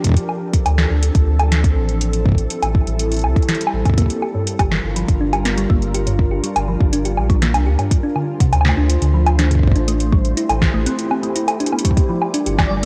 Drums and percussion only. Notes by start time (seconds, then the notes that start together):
0.04 kick, closed hi-hat
0.07 kick
0.09 kick
0.12 kick
0.14 kick, closed hi-hat
0.29 high woodblock
0.53 kick, closed hi-hat
0.66 closed hi-hat, high woodblock
0.78 snare
1.03 closed hi-hat
1.15 kick, closed hi-hat
1.40 closed hi-hat, high woodblock
1.52 snare, closed hi-hat
1.64 kick, closed hi-hat
1.89 closed hi-hat
2.01 closed hi-hat
2.13 closed hi-hat
2.26 kick
2.29 kick
2.32 kick
2.35 kick, closed hi-hat
2.50 closed hi-hat
2.62 closed hi-hat, high woodblock
2.75 kick
2.87 closed hi-hat
2.99 closed hi-hat
3.12 closed hi-hat
3.14 closed hi-hat
3.17 closed hi-hat
3.19 closed hi-hat
3.24 high woodblock
3.36 kick, closed hi-hat
3.42 closed hi-hat
3.49 snare, closed hi-hat
3.55 closed hi-hat
3.61 closed hi-hat
3.67 high woodblock
3.85 kick, closed hi-hat, high woodblock
3.90 kick
3.94 kick
3.98 kick, closed hi-hat
4.02 kick
4.06 kick
4.10 closed hi-hat
4.22 high woodblock
4.47 closed hi-hat
4.59 kick, closed hi-hat, high woodblock
4.71 snare
4.96 closed hi-hat
5.08 kick, closed hi-hat
5.33 closed hi-hat, high woodblock
5.45 snare, closed hi-hat
5.58 closed hi-hat
5.70 kick
5.82 closed hi-hat
5.94 closed hi-hat
6.07 closed hi-hat
6.19 kick
6.44 closed hi-hat
6.56 closed hi-hat, high woodblock
6.80 kick
6.93 closed hi-hat
7.05 closed hi-hat
7.17 high woodblock
7.30 kick, closed hi-hat
7.42 snare, closed hi-hat
7.54 closed hi-hat, high woodblock
7.79 closed hi-hat, high woodblock
7.91 kick, closed hi-hat
8.16 high woodblock
8.40 kick, closed hi-hat
8.53 closed hi-hat, high woodblock
8.61 high woodblock
8.65 snare
8.69 high woodblock
8.90 closed hi-hat
9.02 closed hi-hat
9.26 closed hi-hat, high woodblock
9.39 snare, closed hi-hat
9.51 kick, closed hi-hat
9.55 kick
9.59 kick
9.63 kick
9.67 kick
9.72 kick
9.76 closed hi-hat
9.88 closed hi-hat
10.00 closed hi-hat
10.13 kick
10.25 closed hi-hat
10.37 closed hi-hat
10.49 closed hi-hat, high woodblock
10.62 kick, snare
10.86 closed hi-hat
10.99 closed hi-hat
11.11 high woodblock
11.23 closed hi-hat
11.36 closed hi-hat
11.48 closed hi-hat, high woodblock
11.60 closed hi-hat
11.66 closed hi-hat
11.72 high woodblock
11.79 closed hi-hat
11.85 kick, closed hi-hat
11.91 kick
11.97 kick, closed hi-hat
12.22 high woodblock
12.34 closed hi-hat
12.46 closed hi-hat
12.58 kick, snare, high woodblock